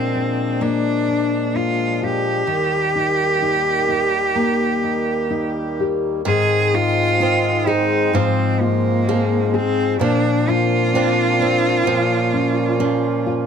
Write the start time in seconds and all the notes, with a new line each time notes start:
Already playing: A#2 F3 G#3 A#3 C4 D4 F4 A#4
0.14 D4
0.61 A#3 D4
1.08 D4
1.55 D4 F4
2.02 F4 G4
2.47 D#2 D#3 G3 A#3
2.95 D#4
3.42 D#4
3.88 D#4
4.35 A#3
4.83 D#4
5.30 D#4
5.80 G4
6.24 G#2 D#3 G#3 C4 D#4 G#4
6.74 D#4 F4
7.20 D#3 G#3 C4 D#4
7.66 G#3 D#4 G#4
8.13 G#2 F3 C4 F4
8.61 A#3 F4
9.08 F3 G#4
9.54 C4 G#4
9.99 A#2 F3 A#3 D4
10.47 D4 F4
10.94 F3 C4 D4
11.39 C4 D4
11.86 A#2 F3 C#4 F4
12.33 C#4
12.79 F3 C#4
13.26 F4